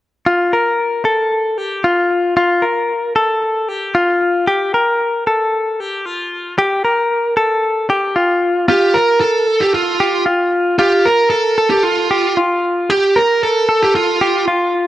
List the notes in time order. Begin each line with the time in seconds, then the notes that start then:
0.26 F4
0.53 A#4
1.05 A4
1.58 G4
1.84 F4
2.37 F4
2.62 A#4
3.16 A4
3.69 G4
3.95 F4
4.47 G4
4.74 A#4
5.27 A4
5.80 G4
6.06 F4
6.58 G4
6.85 A#4
7.37 A4
7.90 G4
8.16 F4
8.68 F4 G4
8.94 A#4
9.20 A4
9.47 A4
9.61 G4
9.74 F4
10.00 G4
10.26 F4
10.79 F4 G4
11.05 A#4
11.30 A4
11.58 A4
11.70 G4
11.83 F4
12.11 G4
12.37 F4
12.90 G4
13.16 A#4
13.43 A4
13.69 A4
13.82 G4
13.95 F4
14.21 G4
14.48 F4